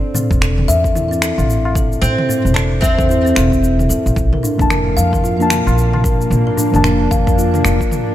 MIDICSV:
0, 0, Header, 1, 8, 480
1, 0, Start_track
1, 0, Tempo, 535714
1, 1814, Time_signature, 4, 2, 24, 8
1, 7300, End_track
2, 0, Start_track
2, 0, Title_t, "Kalimba"
2, 0, Program_c, 0, 108
2, 130, Note_on_c, 0, 60, 71
2, 269, Note_off_c, 0, 60, 0
2, 369, Note_on_c, 0, 69, 75
2, 508, Note_off_c, 0, 69, 0
2, 611, Note_on_c, 0, 76, 100
2, 749, Note_off_c, 0, 76, 0
2, 758, Note_on_c, 0, 69, 67
2, 845, Note_off_c, 0, 69, 0
2, 854, Note_on_c, 0, 64, 81
2, 984, Note_off_c, 0, 64, 0
2, 996, Note_on_c, 0, 60, 78
2, 1088, Note_off_c, 0, 60, 0
2, 1091, Note_on_c, 0, 69, 75
2, 1175, Note_off_c, 0, 69, 0
2, 1572, Note_on_c, 0, 69, 73
2, 1710, Note_off_c, 0, 69, 0
2, 2052, Note_on_c, 0, 60, 73
2, 2190, Note_off_c, 0, 60, 0
2, 2291, Note_on_c, 0, 69, 79
2, 2429, Note_off_c, 0, 69, 0
2, 2528, Note_on_c, 0, 76, 105
2, 2668, Note_off_c, 0, 76, 0
2, 2670, Note_on_c, 0, 69, 71
2, 2761, Note_off_c, 0, 69, 0
2, 2770, Note_on_c, 0, 64, 73
2, 2902, Note_off_c, 0, 64, 0
2, 2912, Note_on_c, 0, 60, 73
2, 3004, Note_on_c, 0, 69, 86
2, 3006, Note_off_c, 0, 60, 0
2, 3091, Note_off_c, 0, 69, 0
2, 3489, Note_on_c, 0, 69, 66
2, 3621, Note_off_c, 0, 69, 0
2, 3877, Note_on_c, 0, 70, 63
2, 3969, Note_off_c, 0, 70, 0
2, 3970, Note_on_c, 0, 62, 70
2, 4109, Note_off_c, 0, 62, 0
2, 4213, Note_on_c, 0, 70, 76
2, 4350, Note_off_c, 0, 70, 0
2, 4450, Note_on_c, 0, 77, 99
2, 4589, Note_off_c, 0, 77, 0
2, 4596, Note_on_c, 0, 70, 69
2, 4683, Note_off_c, 0, 70, 0
2, 4694, Note_on_c, 0, 65, 78
2, 4823, Note_off_c, 0, 65, 0
2, 4840, Note_on_c, 0, 62, 75
2, 4930, Note_off_c, 0, 62, 0
2, 4933, Note_on_c, 0, 70, 70
2, 5016, Note_off_c, 0, 70, 0
2, 5415, Note_on_c, 0, 70, 71
2, 5551, Note_off_c, 0, 70, 0
2, 5796, Note_on_c, 0, 70, 69
2, 5889, Note_off_c, 0, 70, 0
2, 5890, Note_on_c, 0, 62, 72
2, 6029, Note_off_c, 0, 62, 0
2, 6131, Note_on_c, 0, 70, 78
2, 6269, Note_off_c, 0, 70, 0
2, 6372, Note_on_c, 0, 77, 99
2, 6510, Note_off_c, 0, 77, 0
2, 6518, Note_on_c, 0, 70, 73
2, 6604, Note_off_c, 0, 70, 0
2, 6613, Note_on_c, 0, 65, 78
2, 6743, Note_off_c, 0, 65, 0
2, 6754, Note_on_c, 0, 62, 72
2, 6848, Note_off_c, 0, 62, 0
2, 6851, Note_on_c, 0, 70, 73
2, 6935, Note_off_c, 0, 70, 0
2, 7300, End_track
3, 0, Start_track
3, 0, Title_t, "Synth drone"
3, 0, Program_c, 1, 95
3, 3726, Note_on_c, 1, 58, 66
3, 3730, Note_on_c, 1, 62, 74
3, 3731, Note_on_c, 1, 77, 81
3, 5633, Note_off_c, 1, 77, 0
3, 7300, Note_off_c, 1, 58, 0
3, 7300, Note_off_c, 1, 62, 0
3, 7300, End_track
4, 0, Start_track
4, 0, Title_t, "Oud"
4, 0, Program_c, 2, 24
4, 1806, Note_on_c, 2, 60, 95
4, 2256, Note_off_c, 2, 60, 0
4, 2277, Note_on_c, 2, 62, 103
4, 2516, Note_on_c, 2, 60, 81
4, 2533, Note_off_c, 2, 62, 0
4, 3449, Note_off_c, 2, 60, 0
4, 7300, End_track
5, 0, Start_track
5, 0, Title_t, "Synth keys"
5, 0, Program_c, 3, 88
5, 4099, Note_on_c, 3, 53, 77
5, 4113, Note_on_c, 3, 58, 72
5, 4124, Note_on_c, 3, 62, 66
5, 4135, Note_on_c, 3, 81, 83
5, 4794, Note_off_c, 3, 53, 0
5, 4801, Note_off_c, 3, 58, 0
5, 4806, Note_off_c, 3, 62, 0
5, 4812, Note_off_c, 3, 81, 0
5, 4822, Note_on_c, 3, 53, 76
5, 4834, Note_on_c, 3, 58, 76
5, 4847, Note_on_c, 3, 62, 75
5, 4859, Note_on_c, 3, 81, 87
5, 5995, Note_off_c, 3, 53, 0
5, 6001, Note_off_c, 3, 58, 0
5, 6008, Note_off_c, 3, 62, 0
5, 6014, Note_off_c, 3, 81, 0
5, 6015, Note_on_c, 3, 53, 84
5, 6029, Note_on_c, 3, 58, 80
5, 6040, Note_on_c, 3, 62, 86
5, 6055, Note_on_c, 3, 81, 99
5, 7299, Note_off_c, 3, 53, 0
5, 7300, Note_off_c, 3, 58, 0
5, 7300, Note_off_c, 3, 62, 0
5, 7300, Note_off_c, 3, 81, 0
5, 7300, End_track
6, 0, Start_track
6, 0, Title_t, "Upright bass"
6, 0, Program_c, 4, 32
6, 273, Note_on_c, 4, 28, 84
6, 563, Note_off_c, 4, 28, 0
6, 612, Note_on_c, 4, 40, 78
6, 1164, Note_off_c, 4, 40, 0
6, 1236, Note_on_c, 4, 33, 77
6, 1765, Note_off_c, 4, 33, 0
6, 1809, Note_on_c, 4, 33, 89
6, 1910, Note_off_c, 4, 33, 0
6, 2194, Note_on_c, 4, 28, 81
6, 2484, Note_off_c, 4, 28, 0
6, 2529, Note_on_c, 4, 40, 75
6, 2963, Note_off_c, 4, 40, 0
6, 3015, Note_on_c, 4, 28, 97
6, 3446, Note_off_c, 4, 28, 0
6, 3493, Note_on_c, 4, 40, 77
6, 3592, Note_off_c, 4, 40, 0
6, 3637, Note_on_c, 4, 33, 85
6, 3703, Note_off_c, 4, 33, 0
6, 3732, Note_on_c, 4, 34, 93
6, 3831, Note_off_c, 4, 34, 0
6, 4115, Note_on_c, 4, 29, 86
6, 4404, Note_off_c, 4, 29, 0
6, 4455, Note_on_c, 4, 41, 75
6, 5006, Note_off_c, 4, 41, 0
6, 5075, Note_on_c, 4, 34, 84
6, 5604, Note_off_c, 4, 34, 0
6, 5649, Note_on_c, 4, 34, 86
6, 5750, Note_off_c, 4, 34, 0
6, 6035, Note_on_c, 4, 29, 83
6, 6324, Note_off_c, 4, 29, 0
6, 6372, Note_on_c, 4, 41, 76
6, 6804, Note_off_c, 4, 41, 0
6, 6853, Note_on_c, 4, 29, 92
6, 6952, Note_off_c, 4, 29, 0
6, 7300, End_track
7, 0, Start_track
7, 0, Title_t, "Tabla"
7, 128, Note_on_c, 9, 64, 88
7, 131, Note_on_c, 9, 60, 31
7, 218, Note_off_c, 9, 64, 0
7, 220, Note_off_c, 9, 60, 0
7, 276, Note_on_c, 9, 64, 85
7, 281, Note_on_c, 9, 60, 34
7, 366, Note_off_c, 9, 64, 0
7, 371, Note_off_c, 9, 60, 0
7, 610, Note_on_c, 9, 63, 38
7, 699, Note_off_c, 9, 63, 0
7, 756, Note_on_c, 9, 60, 34
7, 846, Note_off_c, 9, 60, 0
7, 1236, Note_on_c, 9, 60, 66
7, 1325, Note_off_c, 9, 60, 0
7, 1480, Note_on_c, 9, 63, 58
7, 1481, Note_on_c, 9, 60, 65
7, 1569, Note_off_c, 9, 63, 0
7, 1571, Note_off_c, 9, 60, 0
7, 2048, Note_on_c, 9, 60, 33
7, 2049, Note_on_c, 9, 64, 81
7, 2138, Note_off_c, 9, 60, 0
7, 2139, Note_off_c, 9, 64, 0
7, 2196, Note_on_c, 9, 64, 93
7, 2285, Note_off_c, 9, 64, 0
7, 2679, Note_on_c, 9, 60, 33
7, 2769, Note_off_c, 9, 60, 0
7, 3011, Note_on_c, 9, 60, 56
7, 3101, Note_off_c, 9, 60, 0
7, 3640, Note_on_c, 9, 63, 48
7, 3730, Note_off_c, 9, 63, 0
7, 3969, Note_on_c, 9, 60, 33
7, 3970, Note_on_c, 9, 64, 94
7, 4058, Note_off_c, 9, 60, 0
7, 4060, Note_off_c, 9, 64, 0
7, 4109, Note_on_c, 9, 60, 33
7, 4113, Note_on_c, 9, 64, 74
7, 4198, Note_off_c, 9, 60, 0
7, 4203, Note_off_c, 9, 64, 0
7, 4452, Note_on_c, 9, 63, 38
7, 4541, Note_off_c, 9, 63, 0
7, 4599, Note_on_c, 9, 60, 33
7, 4689, Note_off_c, 9, 60, 0
7, 5082, Note_on_c, 9, 60, 69
7, 5172, Note_off_c, 9, 60, 0
7, 5308, Note_on_c, 9, 63, 56
7, 5320, Note_on_c, 9, 60, 59
7, 5398, Note_off_c, 9, 63, 0
7, 5410, Note_off_c, 9, 60, 0
7, 5885, Note_on_c, 9, 60, 33
7, 5890, Note_on_c, 9, 64, 87
7, 5974, Note_off_c, 9, 60, 0
7, 5979, Note_off_c, 9, 64, 0
7, 6042, Note_on_c, 9, 64, 75
7, 6132, Note_off_c, 9, 64, 0
7, 7300, End_track
8, 0, Start_track
8, 0, Title_t, "Drums"
8, 130, Note_on_c, 9, 45, 68
8, 138, Note_on_c, 9, 82, 76
8, 220, Note_off_c, 9, 45, 0
8, 228, Note_off_c, 9, 82, 0
8, 275, Note_on_c, 9, 36, 103
8, 285, Note_on_c, 9, 82, 32
8, 364, Note_off_c, 9, 36, 0
8, 374, Note_on_c, 9, 26, 73
8, 375, Note_off_c, 9, 82, 0
8, 382, Note_on_c, 9, 82, 38
8, 464, Note_off_c, 9, 26, 0
8, 472, Note_off_c, 9, 82, 0
8, 518, Note_on_c, 9, 45, 68
8, 607, Note_off_c, 9, 45, 0
8, 620, Note_on_c, 9, 82, 84
8, 710, Note_off_c, 9, 82, 0
8, 755, Note_on_c, 9, 36, 60
8, 765, Note_on_c, 9, 82, 31
8, 844, Note_off_c, 9, 36, 0
8, 854, Note_off_c, 9, 82, 0
8, 854, Note_on_c, 9, 45, 66
8, 862, Note_on_c, 9, 82, 43
8, 944, Note_off_c, 9, 45, 0
8, 952, Note_off_c, 9, 82, 0
8, 1008, Note_on_c, 9, 82, 31
8, 1092, Note_on_c, 9, 26, 74
8, 1098, Note_off_c, 9, 82, 0
8, 1100, Note_on_c, 9, 82, 77
8, 1182, Note_off_c, 9, 26, 0
8, 1190, Note_off_c, 9, 82, 0
8, 1238, Note_on_c, 9, 45, 74
8, 1246, Note_on_c, 9, 82, 35
8, 1327, Note_off_c, 9, 45, 0
8, 1335, Note_off_c, 9, 82, 0
8, 1342, Note_on_c, 9, 82, 47
8, 1432, Note_off_c, 9, 82, 0
8, 1572, Note_on_c, 9, 36, 106
8, 1573, Note_on_c, 9, 45, 75
8, 1581, Note_on_c, 9, 82, 77
8, 1661, Note_off_c, 9, 36, 0
8, 1663, Note_off_c, 9, 45, 0
8, 1671, Note_off_c, 9, 82, 0
8, 1723, Note_on_c, 9, 82, 32
8, 1813, Note_off_c, 9, 82, 0
8, 1821, Note_on_c, 9, 82, 42
8, 1911, Note_off_c, 9, 82, 0
8, 1957, Note_on_c, 9, 45, 72
8, 2047, Note_off_c, 9, 45, 0
8, 2063, Note_on_c, 9, 82, 78
8, 2153, Note_off_c, 9, 82, 0
8, 2207, Note_on_c, 9, 82, 32
8, 2297, Note_off_c, 9, 82, 0
8, 2297, Note_on_c, 9, 26, 69
8, 2297, Note_on_c, 9, 45, 67
8, 2305, Note_on_c, 9, 82, 41
8, 2387, Note_off_c, 9, 26, 0
8, 2387, Note_off_c, 9, 45, 0
8, 2395, Note_off_c, 9, 82, 0
8, 2531, Note_on_c, 9, 36, 109
8, 2542, Note_on_c, 9, 82, 78
8, 2621, Note_off_c, 9, 36, 0
8, 2631, Note_off_c, 9, 82, 0
8, 2676, Note_on_c, 9, 36, 99
8, 2680, Note_on_c, 9, 45, 69
8, 2688, Note_on_c, 9, 82, 32
8, 2765, Note_off_c, 9, 36, 0
8, 2770, Note_off_c, 9, 45, 0
8, 2778, Note_off_c, 9, 82, 0
8, 2783, Note_on_c, 9, 82, 42
8, 2873, Note_off_c, 9, 82, 0
8, 2925, Note_on_c, 9, 82, 28
8, 3014, Note_on_c, 9, 26, 75
8, 3014, Note_on_c, 9, 45, 73
8, 3015, Note_off_c, 9, 82, 0
8, 3021, Note_on_c, 9, 82, 79
8, 3103, Note_off_c, 9, 26, 0
8, 3103, Note_off_c, 9, 45, 0
8, 3111, Note_off_c, 9, 82, 0
8, 3155, Note_on_c, 9, 36, 58
8, 3164, Note_on_c, 9, 82, 34
8, 3245, Note_off_c, 9, 36, 0
8, 3254, Note_off_c, 9, 82, 0
8, 3261, Note_on_c, 9, 82, 45
8, 3351, Note_off_c, 9, 82, 0
8, 3399, Note_on_c, 9, 45, 68
8, 3407, Note_on_c, 9, 82, 28
8, 3488, Note_off_c, 9, 45, 0
8, 3497, Note_off_c, 9, 82, 0
8, 3498, Note_on_c, 9, 82, 78
8, 3587, Note_off_c, 9, 82, 0
8, 3643, Note_on_c, 9, 82, 31
8, 3731, Note_on_c, 9, 36, 115
8, 3732, Note_off_c, 9, 82, 0
8, 3740, Note_on_c, 9, 82, 42
8, 3821, Note_off_c, 9, 36, 0
8, 3829, Note_off_c, 9, 82, 0
8, 3877, Note_on_c, 9, 45, 75
8, 3967, Note_off_c, 9, 45, 0
8, 3983, Note_on_c, 9, 82, 71
8, 4072, Note_off_c, 9, 82, 0
8, 4116, Note_on_c, 9, 36, 96
8, 4127, Note_on_c, 9, 82, 32
8, 4206, Note_off_c, 9, 36, 0
8, 4216, Note_off_c, 9, 82, 0
8, 4216, Note_on_c, 9, 26, 66
8, 4216, Note_on_c, 9, 45, 70
8, 4224, Note_on_c, 9, 82, 40
8, 4305, Note_off_c, 9, 26, 0
8, 4305, Note_off_c, 9, 45, 0
8, 4313, Note_off_c, 9, 82, 0
8, 4463, Note_on_c, 9, 82, 74
8, 4552, Note_off_c, 9, 82, 0
8, 4596, Note_on_c, 9, 36, 60
8, 4600, Note_on_c, 9, 45, 73
8, 4608, Note_on_c, 9, 82, 31
8, 4685, Note_off_c, 9, 36, 0
8, 4690, Note_off_c, 9, 45, 0
8, 4698, Note_off_c, 9, 82, 0
8, 4703, Note_on_c, 9, 82, 42
8, 4792, Note_off_c, 9, 82, 0
8, 4846, Note_on_c, 9, 82, 28
8, 4931, Note_on_c, 9, 26, 75
8, 4931, Note_on_c, 9, 45, 79
8, 4936, Note_off_c, 9, 82, 0
8, 4939, Note_on_c, 9, 82, 73
8, 5020, Note_off_c, 9, 26, 0
8, 5020, Note_off_c, 9, 45, 0
8, 5028, Note_off_c, 9, 82, 0
8, 5087, Note_on_c, 9, 82, 32
8, 5177, Note_off_c, 9, 82, 0
8, 5180, Note_on_c, 9, 82, 46
8, 5270, Note_off_c, 9, 82, 0
8, 5317, Note_on_c, 9, 45, 74
8, 5407, Note_off_c, 9, 45, 0
8, 5412, Note_on_c, 9, 36, 101
8, 5422, Note_on_c, 9, 82, 76
8, 5502, Note_off_c, 9, 36, 0
8, 5511, Note_off_c, 9, 82, 0
8, 5567, Note_on_c, 9, 82, 32
8, 5655, Note_on_c, 9, 45, 75
8, 5656, Note_off_c, 9, 82, 0
8, 5663, Note_on_c, 9, 82, 40
8, 5744, Note_off_c, 9, 45, 0
8, 5752, Note_off_c, 9, 82, 0
8, 5900, Note_on_c, 9, 82, 73
8, 5989, Note_off_c, 9, 82, 0
8, 6036, Note_on_c, 9, 45, 76
8, 6044, Note_on_c, 9, 82, 31
8, 6126, Note_off_c, 9, 45, 0
8, 6130, Note_on_c, 9, 26, 62
8, 6134, Note_off_c, 9, 82, 0
8, 6138, Note_on_c, 9, 82, 38
8, 6219, Note_off_c, 9, 26, 0
8, 6227, Note_off_c, 9, 82, 0
8, 6370, Note_on_c, 9, 45, 74
8, 6372, Note_on_c, 9, 36, 101
8, 6378, Note_on_c, 9, 82, 71
8, 6459, Note_off_c, 9, 45, 0
8, 6461, Note_off_c, 9, 36, 0
8, 6468, Note_off_c, 9, 82, 0
8, 6516, Note_on_c, 9, 36, 96
8, 6523, Note_on_c, 9, 82, 31
8, 6605, Note_off_c, 9, 36, 0
8, 6613, Note_off_c, 9, 82, 0
8, 6618, Note_on_c, 9, 82, 44
8, 6708, Note_off_c, 9, 82, 0
8, 6756, Note_on_c, 9, 45, 76
8, 6764, Note_on_c, 9, 82, 27
8, 6845, Note_off_c, 9, 45, 0
8, 6851, Note_on_c, 9, 26, 70
8, 6853, Note_off_c, 9, 82, 0
8, 6859, Note_on_c, 9, 82, 74
8, 6940, Note_off_c, 9, 26, 0
8, 6948, Note_off_c, 9, 82, 0
8, 6995, Note_on_c, 9, 36, 53
8, 7002, Note_on_c, 9, 82, 33
8, 7084, Note_off_c, 9, 36, 0
8, 7091, Note_on_c, 9, 45, 82
8, 7092, Note_off_c, 9, 82, 0
8, 7099, Note_on_c, 9, 82, 42
8, 7181, Note_off_c, 9, 45, 0
8, 7189, Note_off_c, 9, 82, 0
8, 7300, End_track
0, 0, End_of_file